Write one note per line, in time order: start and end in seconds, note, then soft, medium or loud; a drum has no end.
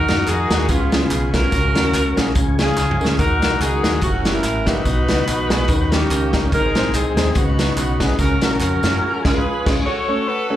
0.00 0.47 D#3 medium
0.00 0.68 F#3 medium
0.00 0.68 A#3 medium
0.00 0.28 D#4 medium
0.00 0.68 D#4 medium
0.00 0.66 F#4 medium
0.00 0.25 A#4 loud
0.00 0.68 A#4 medium
0.08 0.25 F#2 medium
0.08 0.20 A#3 medium
0.08 0.21 D#4 medium
0.08 0.21 F#4 medium
0.08 0.21 A#4 medium
0.08 snare loud
0.08 closed hi-hat medium
0.08 tambourine soft
0.27 0.47 F2 medium
0.27 0.67 D#4 medium
0.27 0.70 G#4 loud
0.27 clap medium
0.27 closed hi-hat medium
0.27 tambourine medium
0.50 0.66 D#2 medium
0.50 0.62 A#3 medium
0.50 0.62 D#4 medium
0.50 0.62 F#4 medium
0.50 0.62 G#4 medium
0.50 snare loud
0.50 closed hi-hat medium
0.50 tambourine medium
0.68 1.04 C#2 medium
0.68 1.30 C#3 medium
0.68 1.51 F3 medium
0.68 1.49 G#3 medium
0.68 1.51 B3 medium
0.68 1.01 B3 medium
0.68 1.51 C#4 medium
0.68 1.02 F4 medium
0.68 1.51 G#4 medium
0.68 kick loud
0.68 closed hi-hat medium
0.68 tambourine medium
0.92 1.04 B3 medium
0.92 1.04 C#4 medium
0.92 1.04 F4 medium
0.92 1.04 G#4 medium
0.92 snare loud
0.92 closed hi-hat medium
0.92 tambourine medium
1.02 1.49 B3 medium
1.02 1.50 F4 medium
1.02 1.34 G#4 medium
1.11 1.30 B1 medium
1.11 clap medium
1.11 closed hi-hat medium
1.11 tambourine medium
1.34 1.50 C2 medium
1.34 1.45 B3 medium
1.34 1.45 C#4 medium
1.34 2.27 C#4 medium
1.34 1.45 F4 medium
1.34 2.27 F#4 medium
1.34 1.45 A#4 medium
1.34 2.30 A#4 loud
1.34 kick medium
1.34 snare loud
1.34 closed hi-hat medium
1.34 tambourine soft
1.52 1.72 C#2 medium
1.52 2.13 C#3 medium
1.52 2.34 F#3 medium
1.52 2.34 A#3 medium
1.52 2.34 C#4 medium
1.52 2.34 A#4 medium
1.52 kick loud
1.52 closed hi-hat medium
1.52 tambourine medium
1.74 1.91 D#2 medium
1.74 1.86 A#3 medium
1.74 1.87 C#4 medium
1.74 1.87 F#4 medium
1.74 1.87 A#4 medium
1.74 snare loud
1.74 closed hi-hat medium
1.74 tambourine soft
1.94 2.14 C#2 medium
1.94 clap medium
1.94 closed hi-hat medium
1.94 tambourine medium
2.17 2.33 A#1 medium
2.17 2.28 A#3 medium
2.17 2.28 C#4 medium
2.17 2.28 F#4 medium
2.17 2.29 G#4 medium
2.17 snare loud
2.17 closed hi-hat medium
2.17 tambourine medium
2.35 2.71 C#2 loud
2.35 2.96 C#3 medium
2.35 3.17 F3 medium
2.35 3.17 G#3 medium
2.35 3.17 C#4 medium
2.35 3.17 G#4 medium
2.35 kick loud
2.35 closed hi-hat medium
2.35 tambourine medium
2.59 2.70 G#3 medium
2.59 2.70 C#4 medium
2.59 3.15 C#4 medium
2.59 2.70 F4 medium
2.59 3.15 F4 medium
2.59 2.70 G#4 medium
2.59 3.15 G#4 medium
2.59 snare loud
2.59 closed hi-hat medium
2.59 tambourine medium
2.77 2.97 C#2 medium
2.77 snare medium
2.77 clap medium
2.77 tambourine medium
2.91 mid tom medium
3.00 3.16 D2 medium
3.00 3.12 G#3 medium
3.00 3.12 C#4 medium
3.00 3.12 F4 medium
3.00 3.12 A#4 medium
3.00 tambourine soft
3.05 snare loud
3.18 3.42 D#2 medium
3.18 4.00 D#3 medium
3.18 3.80 D#3 medium
3.18 4.01 F#3 medium
3.18 4.00 A#3 medium
3.18 3.60 D#4 medium
3.18 3.24 F4 medium
3.18 3.98 F#4 medium
3.18 3.58 A#4 loud
3.18 kick medium
3.18 closed hi-hat medium
3.18 tambourine medium
3.23 4.02 F#4 medium
3.42 3.58 B1 medium
3.42 3.54 A#3 medium
3.42 3.54 D#4 medium
3.42 3.54 F#4 medium
3.42 3.54 A#4 medium
3.42 snare loud
3.42 closed hi-hat medium
3.42 tambourine soft
3.60 3.80 C#2 loud
3.60 4.00 D#4 medium
3.60 4.02 G#4 medium
3.60 clap medium
3.60 closed hi-hat loud
3.60 tambourine medium
3.83 3.99 D#2 medium
3.83 3.95 A#3 medium
3.83 3.95 D#4 medium
3.83 3.95 F#4 medium
3.83 3.95 A#4 medium
3.83 snare loud
3.83 closed hi-hat medium
3.83 tambourine medium
4.01 4.38 F#1 medium
4.01 4.84 E3 medium
4.01 4.84 G3 medium
4.01 4.82 A#3 medium
4.01 4.84 A#3 medium
4.01 4.34 C#4 medium
4.01 4.33 F#4 medium
4.01 4.84 F#4 medium
4.01 kick loud
4.01 closed hi-hat medium
4.01 tambourine medium
4.25 4.37 A#3 medium
4.25 4.37 E4 medium
4.25 4.37 F#4 medium
4.25 4.37 G4 medium
4.25 snare loud
4.25 closed hi-hat medium
4.25 tambourine medium
4.35 4.82 C#4 medium
4.35 4.82 E4 medium
4.35 4.65 A#4 loud
4.44 4.64 A1 medium
4.44 clap medium
4.44 closed hi-hat medium
4.44 tambourine medium
4.67 4.83 A#1 medium
4.67 4.79 A#3 medium
4.67 5.88 D#4 medium
4.67 4.79 E4 medium
4.67 5.88 F#4 medium
4.67 4.79 F#4 medium
4.67 4.79 G4 medium
4.67 5.92 B4 loud
4.67 kick medium
4.67 snare loud
4.67 closed hi-hat medium
4.67 tambourine soft
4.85 5.05 B1 loud
4.85 5.47 B2 medium
4.85 5.67 D#3 medium
4.85 5.67 F#3 medium
4.85 5.67 B3 medium
4.85 5.67 F#4 medium
4.85 kick medium
4.85 closed hi-hat medium
4.85 tambourine medium
5.08 5.24 C#2 medium
5.08 5.20 B3 medium
5.08 5.20 D#4 medium
5.08 5.20 F#4 medium
5.08 5.20 B4 medium
5.08 snare loud
5.08 closed hi-hat medium
5.08 tambourine soft
5.27 5.47 A#1 medium
5.27 clap medium
5.27 closed hi-hat medium
5.27 tambourine medium
5.50 5.66 B1 medium
5.50 5.62 B3 medium
5.50 5.62 D#4 medium
5.50 5.62 F#4 medium
5.50 5.62 G#4 loud
5.50 snare loud
5.50 closed hi-hat medium
5.50 tambourine medium
5.68 6.04 D#2 loud
5.68 6.50 D#3 medium
5.68 6.30 D#3 medium
5.68 6.50 A#3 medium
5.68 6.50 C#4 medium
5.68 6.50 G4 medium
5.68 kick loud
5.68 closed hi-hat medium
5.68 tambourine medium
5.92 6.49 A#3 medium
5.92 6.03 C#4 medium
5.92 6.49 C#4 medium
5.92 6.03 D#4 medium
5.92 6.03 G4 medium
5.92 6.34 G4 medium
5.92 6.04 A#4 medium
5.92 snare loud
5.92 closed hi-hat medium
5.92 tambourine medium
6.10 6.54 C#2 medium
6.10 clap medium
6.10 closed hi-hat medium
6.10 tambourine medium
6.33 6.45 C#4 medium
6.33 6.45 D#4 medium
6.33 6.45 G4 medium
6.33 6.45 A#4 medium
6.33 kick medium
6.33 snare loud
6.33 closed hi-hat medium
6.33 tambourine medium
6.52 6.72 G#1 medium
6.52 7.13 G#2 medium
6.52 7.34 D#3 medium
6.52 7.34 G#3 medium
6.52 7.34 C4 medium
6.52 6.94 D#4 medium
6.52 7.34 G#4 medium
6.52 6.92 A#4 medium
6.52 kick loud
6.52 closed hi-hat medium
6.52 tambourine medium
6.75 6.91 A#1 medium
6.75 6.87 C4 medium
6.75 6.87 D#4 medium
6.75 6.87 G#4 medium
6.75 6.87 C5 medium
6.75 snare loud
6.75 closed hi-hat medium
6.75 tambourine soft
6.94 7.17 C2 medium
6.94 7.33 C4 medium
6.94 7.33 D#4 medium
6.94 7.36 G#4 medium
6.94 clap medium
6.94 closed hi-hat medium
6.94 tambourine medium
7.17 7.33 D#2 medium
7.17 7.28 C4 medium
7.17 7.29 D#4 medium
7.17 7.29 G#4 medium
7.17 7.29 C5 medium
7.17 snare loud
7.17 closed hi-hat medium
7.17 tambourine medium
7.35 7.71 C#2 loud
7.35 7.97 C#3 medium
7.35 8.17 D#3 medium
7.35 8.17 B3 medium
7.35 8.15 B3 medium
7.35 8.17 C#4 medium
7.35 8.15 D#4 medium
7.35 8.17 F#4 medium
7.35 7.77 F#4 medium
7.35 kick loud
7.35 closed hi-hat medium
7.35 tambourine medium
7.59 7.70 C#4 medium
7.59 7.70 D#4 medium
7.59 7.70 F#4 medium
7.59 7.70 B4 medium
7.59 snare loud
7.59 closed hi-hat medium
7.59 tambourine medium
7.77 7.97 B1 medium
7.77 7.99 F#4 medium
7.77 clap medium
7.77 closed hi-hat medium
7.77 tambourine medium
8.00 8.16 C2 medium
8.00 8.11 C#4 medium
8.00 8.11 D#4 medium
8.00 8.12 F#4 medium
8.00 8.19 G#4 medium
8.00 8.12 B4 medium
8.00 kick medium
8.00 snare loud
8.00 closed hi-hat medium
8.00 tambourine soft
8.18 8.38 C#2 medium
8.18 8.79 C#3 medium
8.18 9.01 F#3 medium
8.18 9.01 A#3 medium
8.18 8.41 C#4 medium
8.18 9.00 C#4 medium
8.18 8.41 F#4 medium
8.18 9.01 A#4 medium
8.18 8.42 A#4 loud
8.18 kick medium
8.18 closed hi-hat medium
8.18 tambourine medium
8.41 8.57 A#1 medium
8.41 8.53 A#3 medium
8.41 8.53 C#4 medium
8.41 9.22 C#4 medium
8.41 8.53 F#4 medium
8.41 9.21 F#4 medium
8.41 8.53 A#4 medium
8.41 9.22 A#4 medium
8.41 snare loud
8.41 closed hi-hat medium
8.41 tambourine soft
8.60 8.80 F2 medium
8.60 clap medium
8.60 closed hi-hat medium
8.60 tambourine medium
8.83 8.99 F#2 medium
8.83 8.95 A#3 medium
8.83 8.95 C#4 medium
8.83 8.95 F#4 medium
8.83 8.95 C#5 medium
8.83 snare loud
8.83 closed hi-hat medium
8.83 tambourine medium
9.01 9.07 E3 medium
9.01 9.83 G#3 medium
9.01 9.83 C#4 medium
9.01 9.41 G#4 medium
9.06 9.86 F3 medium
9.24 9.37 C#2 loud
9.24 9.37 G#3 medium
9.24 9.37 C#4 medium
9.24 9.37 F4 medium
9.24 9.69 F4 medium
9.24 9.37 G#4 medium
9.24 9.69 G#4 medium
9.24 9.69 B4 loud
9.24 kick loud
9.24 snare loud
9.24 crash medium
9.42 9.65 D#4 medium
9.42 9.65 G#4 medium
9.66 9.79 C#2 medium
9.66 9.79 G#3 loud
9.66 9.79 C#4 loud
9.66 9.79 F4 medium
9.66 9.79 G#4 medium
9.66 10.06 G#4 medium
9.66 10.06 C#5 medium
9.66 kick loud
9.66 snare loud
9.66 crash medium
9.86 10.26 F#4 medium
9.86 10.56 A4 medium
9.86 10.27 C#5 loud
10.08 10.20 A3 medium
10.08 10.20 C#4 medium
10.08 10.20 F#4 medium
10.08 10.20 A4 medium
10.08 10.20 C#5 medium
10.27 10.56 F#4 medium
10.27 10.56 B4 medium
10.50 10.56 A3 medium
10.50 10.56 C#4 medium
10.50 10.56 F#4 medium
10.50 10.56 A4 medium
10.50 10.56 C#5 medium